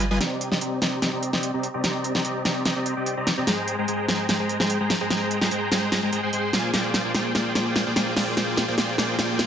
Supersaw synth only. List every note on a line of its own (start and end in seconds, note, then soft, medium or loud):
0.11 0.18 G3 medium
0.11 0.18 F4 medium
0.11 0.18 B4 medium
0.11 0.18 D#5 medium
0.11 0.18 G#5 loud
0.20 0.49 C4 loud
0.20 0.49 G4 medium
0.20 0.49 D5 medium
0.20 0.49 D#5 medium
0.20 0.49 A#5 loud
0.52 0.59 C4 medium
0.52 0.59 G4 medium
0.52 0.59 D5 medium
0.52 0.59 D#5 medium
0.52 0.59 A#5 loud
0.61 0.79 C4 medium
0.61 0.79 G4 medium
0.61 0.80 D5 medium
0.61 0.79 D#5 medium
0.61 0.79 A#5 medium
0.82 1.00 C4 medium
0.82 1.00 G4 medium
0.82 1.00 D5 medium
0.82 1.00 D#5 medium
0.82 1.00 A#5 medium
1.02 1.10 C4 medium
1.02 1.10 G4 medium
1.02 1.10 D5 medium
1.02 1.10 D#5 medium
1.02 1.10 A#5 loud
1.13 1.31 C4 medium
1.13 1.31 G4 medium
1.13 1.31 D5 medium
1.13 1.31 D#5 medium
1.13 1.31 A#5 loud
1.33 1.51 C4 medium
1.33 1.51 G4 medium
1.33 1.51 D5 medium
1.33 1.51 D#5 medium
1.33 1.51 G5 medium
1.54 1.67 C4 medium
1.54 1.68 G4 medium
1.54 1.68 D5 medium
1.54 1.67 D#5 medium
1.54 1.68 A#5 loud
1.74 1.82 C4 loud
1.74 1.82 G4 medium
1.74 1.82 D5 medium
1.74 1.82 D#5 medium
1.74 1.82 A#5 loud
1.84 2.13 C4 medium
1.84 2.12 G4 medium
1.84 2.12 D5 medium
1.84 2.12 D#5 medium
1.84 2.12 A#5 loud
2.15 2.22 C4 medium
2.15 2.22 G4 medium
2.15 2.22 D5 medium
2.15 2.22 D#5 medium
2.15 2.22 A#5 loud
2.25 2.43 C4 medium
2.25 2.43 G4 medium
2.25 2.43 D5 medium
2.25 2.43 D#5 medium
2.25 2.43 A#5 medium
2.45 2.63 C4 medium
2.45 2.63 G4 medium
2.45 2.63 D5 medium
2.45 2.63 D#5 medium
2.45 2.63 A#5 medium
2.65 2.74 C4 loud
2.65 2.74 G4 medium
2.65 2.74 D5 medium
2.65 2.74 D#5 medium
2.65 2.74 A#5 loud
2.76 2.94 C4 loud
2.76 2.94 G4 medium
2.76 2.94 D5 medium
2.76 2.94 D#5 medium
2.76 2.94 A#5 loud
2.97 3.15 C4 medium
2.97 3.15 G4 medium
2.97 3.15 D5 medium
2.97 3.15 D#5 medium
2.97 3.15 G5 medium
3.17 3.31 C4 medium
3.17 3.31 G4 medium
3.17 3.31 D5 medium
3.17 3.31 D#5 medium
3.17 3.31 A#5 loud
3.37 3.45 C4 loud
3.37 3.45 G4 medium
3.37 3.45 D5 medium
3.37 3.45 D#5 medium
3.37 3.45 A#5 loud
3.47 3.76 G#3 medium
3.47 3.76 G#4 medium
3.47 3.76 C5 medium
3.47 3.76 G5 medium
3.47 3.76 A#5 loud
3.78 3.86 G#3 loud
3.78 3.86 G#4 medium
3.78 3.86 C5 medium
3.78 3.86 G5 medium
3.78 3.86 A#5 loud
3.88 4.06 G#3 medium
3.88 4.06 G#4 medium
3.88 4.06 C5 medium
3.88 4.06 G5 medium
3.88 4.06 A#5 medium
4.09 4.27 G#3 medium
4.09 4.27 G#4 medium
4.09 4.27 C5 medium
4.09 4.27 G5 medium
4.09 4.27 A#5 medium
4.29 4.37 G#3 medium
4.29 4.37 G#4 medium
4.29 4.37 C5 medium
4.29 4.37 G5 medium
4.29 4.37 A#5 loud
4.40 4.57 G#3 medium
4.40 4.58 G#4 medium
4.40 4.57 C5 medium
4.40 4.57 G5 medium
4.40 4.58 A#5 loud
4.60 4.78 G#3 medium
4.60 4.78 G#4 medium
4.60 4.78 C5 medium
4.60 4.78 G5 medium
4.60 4.78 A#5 medium
4.80 4.94 G#3 loud
4.80 4.94 G#4 medium
4.80 4.94 C5 medium
4.80 4.94 G5 medium
4.80 4.94 A#5 loud
5.01 5.08 G#3 medium
5.01 5.08 G#4 medium
5.01 5.08 C5 medium
5.01 5.08 G5 medium
5.01 5.08 A#5 loud
5.11 5.39 G#3 medium
5.11 5.39 G#4 medium
5.11 5.39 C5 medium
5.11 5.39 G5 medium
5.11 5.39 A#5 loud
5.42 5.49 G#3 loud
5.42 5.49 G#4 medium
5.42 5.49 C5 medium
5.42 5.49 G5 medium
5.42 5.49 A#5 loud
5.51 5.69 G#3 medium
5.51 5.69 G#4 medium
5.51 5.69 C5 medium
5.51 5.69 G5 medium
5.51 5.69 A#5 medium
5.72 5.90 G#3 medium
5.72 5.90 G#4 medium
5.72 5.90 C5 medium
5.72 5.90 G5 medium
5.72 5.90 A#5 medium
5.92 6.00 G#3 medium
5.92 6.00 G#4 medium
5.92 6.00 C5 medium
5.92 6.00 G5 medium
5.92 6.00 A#5 loud
6.03 6.11 G#3 medium
6.03 6.11 G#4 medium
6.03 6.11 C5 medium
6.03 6.11 G5 medium
6.03 6.11 A#5 loud
6.12 6.21 G#3 medium
6.12 6.21 G#4 medium
6.12 6.21 C5 medium
6.12 6.21 G5 medium
6.12 6.21 A#5 loud
6.23 6.31 G#3 medium
6.23 6.31 G#4 medium
6.23 6.31 C5 medium
6.23 6.31 G5 medium
6.23 6.31 C6 loud
6.33 6.51 G#3 medium
6.33 6.51 G#4 medium
6.33 6.51 C5 medium
6.33 6.51 G5 medium
6.33 6.51 C6 medium
6.53 6.71 A#3 medium
6.53 6.71 F4 medium
6.53 6.71 G#4 medium
6.53 6.71 C5 medium
6.53 6.71 D5 medium
6.53 6.71 G#5 medium
6.74 7.02 A#3 medium
6.74 7.02 F4 medium
6.74 7.02 G#4 medium
6.74 7.02 C5 medium
6.74 7.02 D5 medium
6.74 7.02 G5 loud
7.05 7.12 A#3 medium
7.05 7.12 F4 medium
7.05 7.12 G#4 medium
7.05 7.12 C5 medium
7.05 7.12 D5 medium
7.05 7.12 G5 loud
7.14 7.33 A#3 medium
7.14 7.33 F4 medium
7.14 7.33 G#4 medium
7.14 7.33 C5 medium
7.14 7.33 D5 medium
7.14 7.33 G5 medium
7.35 7.53 A#3 medium
7.35 7.53 F4 medium
7.35 7.53 G#4 medium
7.35 7.53 C5 medium
7.35 7.53 D5 medium
7.35 7.53 G5 medium
7.55 7.84 A#3 medium
7.55 7.84 F4 medium
7.55 7.84 G#4 medium
7.55 7.84 C5 medium
7.55 7.84 D5 medium
7.55 7.84 G5 loud
7.86 7.94 A#3 medium
7.86 7.94 F4 medium
7.86 7.94 G#4 medium
7.86 7.94 C5 medium
7.86 7.94 D5 medium
7.86 7.94 G5 loud
7.96 8.14 A#3 medium
7.96 8.14 F4 medium
7.96 8.14 G#4 medium
7.96 8.14 C5 medium
7.96 8.14 D5 medium
7.96 8.14 G5 medium
8.16 8.35 A#3 medium
8.16 8.35 F4 medium
8.16 8.35 G#4 medium
8.16 8.35 C5 medium
8.16 8.35 D5 medium
8.16 8.35 G5 medium
8.37 8.66 A#3 medium
8.37 8.66 F4 medium
8.37 8.66 G#4 medium
8.37 8.66 C5 medium
8.37 8.66 D5 medium
8.37 8.66 G5 loud
8.68 8.76 A#3 medium
8.68 8.76 F4 medium
8.68 8.76 G#4 medium
8.68 8.76 C5 medium
8.68 8.76 D5 medium
8.68 8.76 G5 loud
8.78 8.96 A#3 medium
8.78 8.96 F4 medium
8.78 8.96 G#4 medium
8.78 8.96 C5 medium
8.78 8.96 D5 medium
8.78 8.96 G5 medium
8.98 9.16 A#3 medium
8.98 9.16 F4 medium
8.98 9.16 G#4 medium
8.98 9.16 C5 medium
8.98 9.16 D5 medium
8.98 9.16 G5 medium
9.19 9.46 A#3 medium
9.19 9.46 F4 medium
9.19 9.46 G#4 medium
9.19 9.46 C5 medium
9.19 9.46 D5 medium
9.19 9.46 G5 loud